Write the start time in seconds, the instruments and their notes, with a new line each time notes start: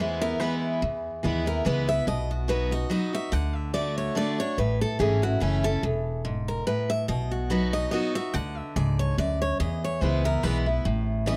Already playing: upright bass E2, steel-string acoustic guitar E2
0.00 steel-string acoustic guitar E3 G#3 B3 E4 C5
0.21 steel-string acoustic guitar B3 E4 A#4
0.40 steel-string acoustic guitar E3 G#3 B3 E4 B4
0.82 upright bass E2, steel-string acoustic guitar E2
1.23 upright bass D#2, steel-string acoustic guitar E3 G#3 B3 E4
1.46 steel-string acoustic guitar B3 E4 A#4
1.65 upright bass C#2, steel-string acoustic guitar E3 G#3 B3 E4 B4
1.88 steel-string acoustic guitar B3 E4 E5
2.07 upright bass B1, steel-string acoustic guitar B2 D#5
2.31 steel-string acoustic guitar F#4
2.48 steel-string acoustic guitar F#3 B3 D#4 F#4 B4
2.71 steel-string acoustic guitar D#4 F#4 D#5
2.90 steel-string acoustic guitar F#3 B3 D#4 F#4 D#5
3.13 steel-string acoustic guitar D#4 F#4 E5
3.32 upright bass D2, steel-string acoustic guitar D3 F#5
3.56 steel-string acoustic guitar E5
3.73 steel-string acoustic guitar D3 A3 D4 F#4 D5
3.98 steel-string acoustic guitar C#5
4.15 steel-string acoustic guitar D3 A3 D4 F#4 D5
4.38 steel-string acoustic guitar D4 F#4 C#5
4.58 upright bass A1, steel-string acoustic guitar A2 B4
4.81 steel-string acoustic guitar A4
4.99 upright bass G#1, steel-string acoustic guitar E3 A3 C#4 E4 G#4
5.22 steel-string acoustic guitar C#4 E4 F#4
5.40 upright bass F#1, steel-string acoustic guitar E3 A3 C#4 E4
5.63 steel-string acoustic guitar C#4 E4 A4
5.83 upright bass E1, steel-string acoustic guitar E2
6.25 steel-string acoustic guitar G#2
6.48 steel-string acoustic guitar A#4
6.67 steel-string acoustic guitar A2 B4
6.90 steel-string acoustic guitar E5
7.08 upright bass B1, steel-string acoustic guitar B2 D#5
7.31 steel-string acoustic guitar F#4
7.50 steel-string acoustic guitar F#3 B3 D#4 F#4 B4
7.73 steel-string acoustic guitar D#5
7.91 steel-string acoustic guitar F#3 B3 D#4 F#4 D#5
8.15 steel-string acoustic guitar D#4 F#4 E5
8.34 upright bass D2, steel-string acoustic guitar D3 F#5
8.57 steel-string acoustic guitar E5
8.76 upright bass C#2, steel-string acoustic guitar G#2 D5
8.99 steel-string acoustic guitar C#5
9.18 upright bass D2, steel-string acoustic guitar F#2 D5
9.42 steel-string acoustic guitar C#5
9.60 upright bass E2, steel-string acoustic guitar E2 D#5
9.84 steel-string acoustic guitar C#5
10.01 upright bass C#2, steel-string acoustic guitar E3 G#3 B3 E4 C5
10.24 steel-string acoustic guitar B3 E4 A#4
10.43 upright bass B1, steel-string acoustic guitar E3 G#3 B3 E4 B4
10.66 steel-string acoustic guitar B3 E4
10.85 upright bass A1, steel-string acoustic guitar A2
11.26 steel-string acoustic guitar E3 B3 C#4 E4 D#5